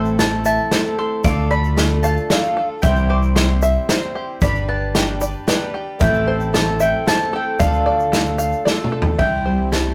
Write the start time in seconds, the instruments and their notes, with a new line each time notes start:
Already playing: upright bass A1, twelve-string acoustic guitar A2 E3 A3 C4 E4 A4, five-string banjo C5 E5
0.05 shaker
0.18 twelve-string acoustic guitar A3 C4 E4 A4, five-string banjo A4, mandolin A5, snare, closed hi-hat
0.45 five-string banjo E5, mandolin A5, shaker
0.71 twelve-string acoustic guitar A3 C4 E4 A4, five-string banjo C5, snare, closed hi-hat
0.99 five-string banjo A4, mandolin C6
1.23 upright bass D2, twelve-string acoustic guitar D3 A3 D4 F4 A4, five-string banjo F5, mandolin D6, kick, closed hi-hat, shaker
1.51 five-string banjo D5, mandolin B5, shaker
1.64 shaker
1.76 twelve-string acoustic guitar A3 D4 F4 A4, five-string banjo A4, snare, closed hi-hat
2.03 five-string banjo F5, mandolin A5, shaker
2.17 shaker
2.30 twelve-string acoustic guitar A3 D4 F4 A4, five-string banjo D5, mandolin F5, snare, closed hi-hat
2.43 shaker
2.56 twelve-string acoustic guitar D4 F4 A4, five-string banjo A4
2.82 upright bass C2, twelve-string acoustic guitar C3 E3 G3 C4 E4 C5, five-string banjo E5, mandolin G5, kick, closed hi-hat, shaker
2.96 shaker
3.10 five-string banjo C5, mandolin D6
3.22 shaker
3.36 twelve-string acoustic guitar G3 C4 E4 C5, five-string banjo G4, mandolin C6, snare, closed hi-hat
3.62 five-string banjo E5, shaker
3.89 twelve-string acoustic guitar G3 C4 E4 C5, five-string banjo C5, mandolin C6, snare, closed hi-hat
4.15 five-string banjo G4
4.41 upright bass G1, twelve-string acoustic guitar G3 D4 G4 B4, five-string banjo D5, mandolin B5, kick, closed hi-hat, shaker
4.55 shaker
4.69 five-string banjo B4, mandolin A5
4.95 twelve-string acoustic guitar G3 D4 G4 B4, five-string banjo G4, snare, closed hi-hat
5.20 twelve-string acoustic guitar D4 G4 B4, five-string banjo D5, shaker
5.47 twelve-string acoustic guitar G3 D4 G4 B4, five-string banjo B4, snare, closed hi-hat
5.74 five-string banjo G4
5.99 upright bass A1, twelve-string acoustic guitar A2 E3 A3 C4 E4 A4, five-string banjo E5, mandolin G5, kick, closed hi-hat, shaker
6.14 shaker
6.27 five-string banjo C5
6.40 shaker
6.53 twelve-string acoustic guitar A3 C4 E4 A4, five-string banjo A4, mandolin A5, snare, closed hi-hat
6.79 twelve-string acoustic guitar A3 C4 E4 A4, five-string banjo E5, mandolin G5, shaker
7.06 twelve-string acoustic guitar A3 C4 E4 A4, five-string banjo C5, mandolin A5, snare, closed hi-hat
7.32 twelve-string acoustic guitar A3 C4 E4 A4, five-string banjo A4, mandolin G5
7.59 upright bass D2, twelve-string acoustic guitar D3 A3 D4 F4 A4, five-string banjo F5, mandolin F5, kick, closed hi-hat, shaker
7.73 shaker
7.86 five-string banjo D5
8.00 shaker
8.12 twelve-string acoustic guitar A3 D4 F4 A4, five-string banjo A4, snare, closed hi-hat
8.26 shaker
8.38 five-string banjo F5, shaker
8.52 shaker
8.65 twelve-string acoustic guitar A3 D4 F4 A4, five-string banjo D5, snare
8.84 mid tom
8.92 five-string banjo A4
9.02 floor tom
9.18 upright bass C2, twelve-string acoustic guitar C3 E3 G3 C4 E4 C5, five-string banjo E5, mandolin G5, kick, ride
9.46 steel-string acoustic guitar G3, five-string banjo C5
9.71 twelve-string acoustic guitar G3 C4 E4 C5, five-string banjo E4, mandolin A5, snare, ride